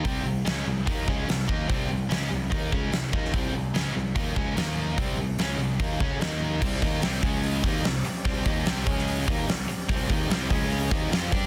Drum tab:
CC |----------------|----------------|----------------|----------------|
HH |o---o---o---o---|o---o---o---o---|o---o---o---o---|o---o---o---o---|
SD |----o-------o---|----o-------o--o|----o-------o---|----o-------o---|
BD |o-------o-o---o-|o-------o-o---o-|o-------o-o-----|o-------o-o-----|

CC |x---------------|----------------|----------------|
HH |--o-o---o-o-o-o-|o-o-o-o-o---o-o-|o-o-o-o-o-o-o-o-|
SD |----o-------o---|----o--o----o---|----o-------o---|
BD |o-o---o---o-----|o-o---o---o-----|o-o---o---o---o-|